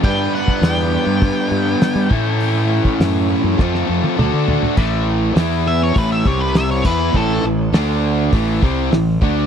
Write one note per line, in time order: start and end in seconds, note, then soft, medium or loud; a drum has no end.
0.03 2.08 G2 medium
0.03 0.26 G2 medium
0.03 2.09 D3 medium
0.03 1.20 G3 medium
0.03 1.21 B3 loud
0.03 1.21 D4 medium
0.03 1.22 B4 medium
0.03 0.35 G5 loud
0.03 kick loud
0.03 crash medium
0.35 0.62 F#5 loud
0.48 kick medium
0.61 0.96 E2 medium
0.61 2.81 G5 medium
0.61 snare loud
0.61 open hi-hat medium
1.06 1.30 G2 medium
1.21 2.09 G3 medium
1.21 2.10 B3 medium
1.21 2.09 D4 medium
1.21 2.10 B4 medium
1.21 kick loud
1.21 open hi-hat medium
1.51 1.74 G2 medium
1.67 snare soft
1.81 snare loud
1.81 open hi-hat medium
1.95 2.07 G3 loud
2.10 3.27 A2 medium
2.10 2.79 A2 loud
2.10 3.57 E3 loud
2.10 3.28 A3 medium
2.10 3.28 C#4 medium
2.10 3.28 E4 loud
2.10 3.28 A4 loud
2.10 kick loud
2.40 open hi-hat medium
2.81 4.15 F#5 medium
2.81 kick medium
3.00 3.34 F#2 medium
3.00 snare loud
3.00 open hi-hat medium
3.29 3.58 A2 medium
3.29 3.58 A3 medium
3.29 3.58 C#4 medium
3.29 3.57 E4 medium
3.29 3.57 A4 medium
3.44 3.55 F#2 medium
3.59 3.82 F2 loud
3.59 4.16 F3 medium
3.59 4.16 A3 medium
3.59 4.17 C4 medium
3.59 4.18 F4 medium
3.59 4.18 A4 medium
3.59 kick loud
3.59 snare medium
3.75 snare medium
3.89 4.00 F2 medium
4.04 high tom medium
4.17 4.30 D2 medium
4.17 4.75 D3 loud
4.17 4.76 A3 loud
4.17 4.76 D4 medium
4.17 4.76 F#4 medium
4.17 4.77 A4 loud
4.17 mid tom loud
4.33 4.56 D3 loud
4.48 floor tom loud
4.63 floor tom medium
4.77 5.33 A1 loud
4.77 5.36 A2 loud
4.77 5.36 E3 medium
4.77 5.38 A3 loud
4.77 kick loud
4.77 crash loud
5.36 5.92 E2 loud
5.36 5.95 E3 medium
5.36 5.95 B3 medium
5.36 5.96 E4 loud
5.36 snare loud
5.36 open hi-hat medium
5.68 5.81 E5 medium
5.83 5.98 C#5 medium
5.95 6.24 A1 loud
5.95 6.24 A2 medium
5.95 6.25 E3 medium
5.95 6.25 A3 medium
5.95 6.11 B4 medium
5.95 kick loud
5.95 open hi-hat medium
6.12 6.27 E5 loud
6.25 6.81 C2 loud
6.25 6.84 C3 medium
6.25 6.84 G3 medium
6.25 6.85 C4 medium
6.25 6.41 C#5 medium
6.25 kick loud
6.40 6.55 B4 medium
6.55 6.70 E5 medium
6.55 snare loud
6.55 open hi-hat medium
6.71 6.86 C#5 medium
6.85 7.13 E2 medium
6.85 7.13 E3 medium
6.85 7.14 B3 medium
6.85 7.14 E4 loud
6.85 7.14 B4 medium
6.85 kick loud
6.85 crash loud
7.14 7.42 A1 medium
7.14 7.43 A2 medium
7.14 7.43 E3 loud
7.14 7.44 A3 loud
7.14 7.44 A4 loud
7.14 kick loud
7.30 snare soft
7.43 7.71 A1 medium
7.43 7.68 A2 medium
7.43 7.68 E3 medium
7.43 snare soft
7.73 8.29 D2 loud
7.73 8.31 D3 medium
7.73 8.32 A3 loud
7.73 8.32 D4 loud
7.73 snare loud
7.73 open hi-hat medium
8.32 8.61 A1 loud
8.32 8.61 A2 medium
8.32 8.62 E3 medium
8.32 8.62 A3 medium
8.32 kick loud
8.32 open hi-hat medium
8.62 8.90 C2 medium
8.62 8.91 C3 medium
8.62 8.91 G3 medium
8.62 8.92 C4 loud
8.62 kick loud
8.91 9.19 A1 medium
8.91 9.16 A2 medium
8.91 9.16 E3 medium
8.91 snare loud
8.91 open hi-hat medium
9.21 9.46 D2 loud
9.21 9.46 D3 medium
9.21 9.46 A3 medium
9.21 9.46 D4 medium
9.21 kick loud